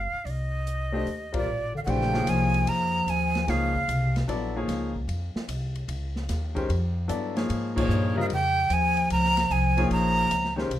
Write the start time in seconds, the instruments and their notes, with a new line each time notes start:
Already playing: flute F5
0.13 muted upright bass stroke
0.25 upright bass C2, flute D5, open hi-hat
0.30 flute D#5
0.67 closed hi-hat
0.92 grand piano A3 D4 G4 C5 D#5
1.06 upright bass D#2, open hi-hat
1.33 bass clarinet A#2, grand piano G3 C4 F4 A#4 D5, kick, ride
1.37 flute D5
1.46 upright bass A1
1.75 bass clarinet D3, flute F5
1.83 upright bass A#1, bass clarinet D3, grand piano E3, flute F#5
1.87 bass clarinet C#3, grand piano A3 D4 G4 C5, flute G5, ride
2.01 snare
2.13 grand piano F3 A#3 D#4 G#4 C#5, snare
2.27 upright bass C2, bass clarinet F3, flute G#5, hi-hat pedal, ride
2.54 ride
2.66 upright bass F2, bass clarinet F3, flute A#5, ride
3.06 upright bass D#2, bass clarinet F3, flute G#5, hi-hat pedal, ride
3.35 snare, ride
3.47 upright bass C#2, bass clarinet C#3, grand piano F3 A#3 D#4 G#4 C#5, flute F5, snare, ride
3.76 kick
3.88 upright bass C2, hi-hat pedal, ride
4.16 snare, ride
4.28 upright bass A#1, grand piano F#3 B3 E4 A4 D5, ride
4.55 grand piano F3 A#3 D#4 G#4 C#5
4.68 upright bass C#2, snare, hi-hat pedal, ride
4.96 kick
5.08 upright bass F2, ride
5.35 muted upright bass stroke, snare
5.48 upright bass C2, hi-hat pedal, ride
5.75 ride
5.88 upright bass C#2, ride
6.16 snare
6.29 upright bass D#2, snare, hi-hat pedal, ride
6.55 grand piano D#3 G#3 C#4 G4 C5, kick, ride
6.69 upright bass F2, ride
7.08 upright bass G2, grand piano F#3 B3 E4 A4 D5, hi-hat pedal, ride
7.35 grand piano F3 A#3 D#4 G#4 C#5, snare, ride
7.50 upright bass G#2, ride
7.75 bass clarinet A#2, grand piano F3 A#3 D#4 G#4 C#5, kick, crash
7.81 flute C#5
7.88 upright bass G2, hi-hat pedal
8.15 bass clarinet C#3, grand piano G3 C4 F4 A#4 D#5
8.21 flute F5
8.30 upright bass F2, bass clarinet C#3, flute G5, ride
8.70 upright bass D#2, bass clarinet F3, flute G#5, hi-hat pedal, ride
8.97 ride
9.10 upright bass C#2, bass clarinet F3, flute A#5, ride
9.24 snare
9.37 snare, ride
9.50 upright bass C2, bass clarinet F3, flute G#5, hi-hat pedal
9.77 grand piano F3 A#3 D#4 G#4 C#5, ride
9.90 upright bass A#1, bass clarinet F3, flute A#5, ride
10.30 upright bass C#2, hi-hat pedal, ride
10.44 snare
10.56 grand piano D#3 G#3 C#4 G4 C5, snare
10.70 upright bass C2, ride